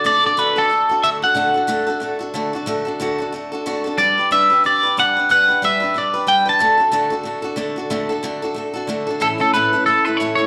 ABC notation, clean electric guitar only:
X:1
M:4/4
L:1/8
Q:"Swing" 1/4=183
K:D
V:1 name="Clean electric guitar"
d d B A3 e f- | f6- f z | z8 | d2 e2 d2 f2 |
f2 e2 d2 g a- | a6- a z | z8 | A A B2 A B c c |]